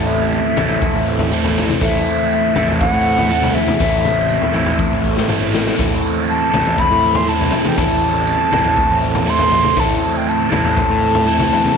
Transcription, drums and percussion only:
0.08 tambourine medium
0.32 tambourine medium
0.57 floor tom medium
0.57 mid tom medium
0.57 tambourine soft
0.69 floor tom medium
0.82 kick medium
0.82 floor tom medium
0.82 tambourine medium
1.07 tambourine medium
1.19 floor tom medium
1.31 tambourine medium
1.44 floor tom medium
1.56 floor tom medium
1.56 tambourine medium
1.70 mid tom medium
1.81 kick medium
1.81 floor tom medium
2.06 tambourine medium
2.31 tambourine medium
2.56 floor tom medium
2.56 mid tom medium
2.56 tambourine soft
2.68 floor tom medium
2.81 kick medium
2.81 floor tom medium
2.81 tambourine medium
3.05 tambourine medium
3.18 floor tom medium
3.31 tambourine medium
3.43 floor tom medium
3.55 floor tom medium
3.55 tambourine medium
3.68 mid tom medium
3.80 kick medium
3.80 floor tom medium
4.05 mid tom medium
4.05 tambourine medium
4.29 tambourine medium
4.42 floor tom medium
4.54 floor tom medium
4.66 floor tom medium
4.78 kick medium
4.78 high tom medium
4.78 tambourine medium
5.04 kick medium
5.04 tambourine medium
5.17 snare medium
5.29 mid tom medium
5.29 tambourine medium
5.54 snare medium
5.54 tambourine medium
5.67 snare medium
5.79 kick medium
5.79 floor tom medium
6.03 tambourine medium
6.28 tambourine medium
6.54 floor tom medium
6.54 mid tom medium
6.54 tambourine soft
6.66 floor tom medium
6.78 kick medium
6.78 floor tom medium
6.78 tambourine medium
7.04 tambourine medium
7.15 floor tom medium
7.27 tambourine medium
7.41 floor tom medium
7.51 floor tom medium
7.51 tambourine medium
7.65 mid tom medium
7.78 kick loud
7.78 floor tom medium
8.01 tambourine medium
8.26 tambourine medium
8.52 floor tom medium
8.52 mid tom medium
8.52 tambourine soft
8.64 floor tom medium
8.76 kick medium
8.76 floor tom medium
8.76 tambourine medium
9.02 tambourine medium
9.15 floor tom medium
9.27 tambourine medium
9.39 floor tom medium
9.51 floor tom medium
9.51 tambourine medium
9.64 mid tom medium
9.77 kick loud
9.77 floor tom medium
10.03 tambourine medium
10.27 tambourine medium
10.52 floor tom medium
10.52 mid tom medium
10.52 tambourine soft
10.65 floor tom medium
10.77 kick medium
10.77 floor tom medium
10.77 tambourine medium
11.02 tambourine medium
11.15 floor tom medium
11.26 tambourine medium
11.40 floor tom medium
11.52 floor tom medium
11.52 tambourine medium
11.65 mid tom medium

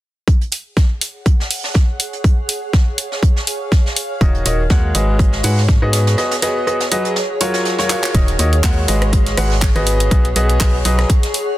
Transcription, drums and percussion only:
0.28 kick loud
0.28 closed hi-hat medium
0.41 closed hi-hat soft
0.52 closed hi-hat medium
0.52 open hi-hat loud
0.77 kick loud
0.77 snare loud
0.77 closed hi-hat medium
1.01 closed hi-hat medium
1.01 open hi-hat loud
1.26 kick loud
1.26 closed hi-hat medium
1.40 snare soft
1.51 open hi-hat loud
1.51 open hi-hat medium
1.64 snare medium
1.74 kick loud
1.74 snare loud
1.74 closed hi-hat medium
2.00 closed hi-hat medium
2.00 open hi-hat loud
2.13 closed hi-hat soft
2.24 kick loud
2.24 closed hi-hat medium
2.49 closed hi-hat medium
2.49 open hi-hat loud
2.73 kick loud
2.73 snare loud
2.73 closed hi-hat medium
2.98 closed hi-hat medium
2.98 open hi-hat loud
3.12 snare soft
3.23 kick loud
3.23 closed hi-hat loud
3.36 snare soft
3.47 closed hi-hat medium
3.47 open hi-hat loud
3.72 kick loud
3.72 snare loud
3.72 closed hi-hat medium
3.86 snare soft
3.96 closed hi-hat medium
3.96 open hi-hat loud
4.21 kick loud
4.21 closed hi-hat medium
4.34 closed hi-hat soft
4.45 closed hi-hat medium
4.45 open hi-hat loud
4.70 kick loud
4.70 snare loud
4.70 closed hi-hat medium
4.95 closed hi-hat medium
4.95 open hi-hat loud
5.19 kick loud
5.19 closed hi-hat medium
5.32 snare medium
5.43 open hi-hat medium
5.43 open hi-hat loud
5.57 snare soft
5.68 kick loud
5.68 snare loud
5.68 closed hi-hat medium
5.93 snare loud
5.93 closed hi-hat medium
5.93 open hi-hat loud
6.07 snare loud
6.07 closed hi-hat medium
6.18 snare loud
6.18 closed hi-hat medium
6.31 snare loud
6.31 closed hi-hat medium
6.42 snare loud
6.42 closed hi-hat medium
6.42 open hi-hat loud
6.67 closed hi-hat medium
6.80 snare loud
6.80 closed hi-hat medium
6.92 open hi-hat loud
7.05 closed hi-hat medium
7.16 snare medium
7.16 closed hi-hat medium
7.40 closed hi-hat medium
7.40 open hi-hat loud
7.54 snare medium
7.54 closed hi-hat medium
7.65 snare medium
7.65 closed hi-hat medium
7.78 snare medium
7.78 closed hi-hat medium
7.90 clap medium
7.90 closed hi-hat medium
7.90 open hi-hat loud
8.04 clap loud
8.14 kick loud
8.14 closed hi-hat medium
8.28 closed hi-hat soft
8.39 closed hi-hat medium
8.39 open hi-hat loud
8.53 closed hi-hat soft
8.63 kick loud
8.63 snare loud
8.63 clap loud
8.63 closed hi-hat medium
8.88 closed hi-hat medium
8.88 open hi-hat loud
9.02 cross-stick medium
9.02 closed hi-hat soft
9.13 kick loud
9.13 closed hi-hat medium
9.27 snare soft
9.27 closed hi-hat medium
9.37 cross-stick medium
9.37 open hi-hat medium
9.37 open hi-hat loud
9.51 snare medium
9.62 kick loud
9.62 snare loud
9.62 clap loud
9.62 closed hi-hat medium
9.76 closed hi-hat soft
9.87 closed hi-hat medium
9.87 open hi-hat loud
10.00 closed hi-hat medium
10.00 closed hi-hat soft
10.11 kick loud
10.11 closed hi-hat medium
10.25 closed hi-hat soft
10.36 closed hi-hat medium
10.36 open hi-hat loud
10.49 closed hi-hat soft
10.60 kick loud
10.60 snare loud
10.60 clap loud
10.60 closed hi-hat medium
10.85 closed hi-hat medium
10.85 open hi-hat loud
10.99 cross-stick medium
10.99 snare soft
10.99 closed hi-hat soft
11.10 kick loud
11.10 closed hi-hat medium
11.23 snare soft
11.23 closed hi-hat medium
11.34 closed hi-hat medium
11.34 open hi-hat loud

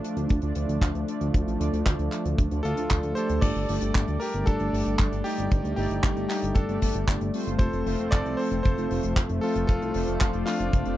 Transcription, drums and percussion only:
0.04 closed hi-hat loud
0.17 closed hi-hat medium
0.29 kick loud
0.29 closed hi-hat medium
0.42 closed hi-hat soft
0.55 closed hi-hat loud
0.69 closed hi-hat medium
0.81 kick loud
0.81 clap loud
0.81 closed hi-hat medium
0.95 closed hi-hat soft
1.08 closed hi-hat medium
1.21 closed hi-hat medium
1.34 kick loud
1.34 closed hi-hat medium
1.48 closed hi-hat soft
1.61 closed hi-hat loud
1.74 closed hi-hat medium
1.86 kick loud
1.86 clap loud
1.86 closed hi-hat medium
1.99 closed hi-hat soft
2.12 clap medium
2.12 closed hi-hat medium
2.25 closed hi-hat medium
2.38 kick loud
2.38 closed hi-hat medium
2.51 closed hi-hat soft
2.65 closed hi-hat medium
2.77 closed hi-hat medium
2.90 kick loud
2.90 clap loud
2.90 closed hi-hat medium
3.03 closed hi-hat soft
3.16 closed hi-hat loud
3.29 closed hi-hat medium
3.42 kick loud
3.42 closed hi-hat medium
3.42 crash loud
3.56 closed hi-hat soft
3.69 open hi-hat loud
3.82 closed hi-hat medium
3.95 kick loud
3.95 clap loud
3.95 closed hi-hat medium
4.08 closed hi-hat soft
4.21 open hi-hat loud
4.34 closed hi-hat medium
4.47 kick loud
4.47 closed hi-hat medium
4.60 closed hi-hat soft
4.74 open hi-hat loud
4.86 closed hi-hat medium
4.99 kick loud
4.99 clap loud
4.99 closed hi-hat medium
5.13 closed hi-hat soft
5.25 open hi-hat loud
5.38 closed hi-hat medium
5.51 kick loud
5.51 closed hi-hat medium
5.65 closed hi-hat soft
5.77 open hi-hat loud
5.91 closed hi-hat medium
6.03 kick loud
6.03 clap loud
6.03 closed hi-hat medium
6.17 closed hi-hat soft
6.30 clap medium
6.30 open hi-hat loud
6.43 closed hi-hat medium
6.55 kick loud
6.55 closed hi-hat medium
6.69 closed hi-hat soft
6.82 kick medium
6.82 open hi-hat loud
6.94 closed hi-hat medium
7.08 kick loud
7.08 clap loud
7.08 closed hi-hat medium
7.21 closed hi-hat soft
7.34 open hi-hat loud
7.47 closed hi-hat medium
7.59 kick loud
7.59 closed hi-hat medium
7.73 closed hi-hat soft
7.86 open hi-hat loud
7.99 closed hi-hat medium
8.12 kick loud
8.12 clap loud
8.12 closed hi-hat medium
8.26 closed hi-hat soft
8.39 open hi-hat loud
8.52 closed hi-hat medium
8.65 kick loud
8.65 closed hi-hat medium
8.78 closed hi-hat soft
8.91 open hi-hat loud
9.03 closed hi-hat medium
9.16 kick loud
9.16 clap loud
9.16 closed hi-hat medium
9.29 closed hi-hat soft
9.43 open hi-hat loud
9.55 closed hi-hat medium
9.69 kick loud
9.69 closed hi-hat medium
9.82 closed hi-hat soft
9.94 open hi-hat loud
10.08 closed hi-hat medium
10.21 kick loud
10.21 clap loud
10.21 closed hi-hat medium
10.33 closed hi-hat soft
10.47 clap medium
10.47 open hi-hat loud
10.60 closed hi-hat medium
10.73 kick loud
10.73 closed hi-hat medium
10.85 closed hi-hat soft

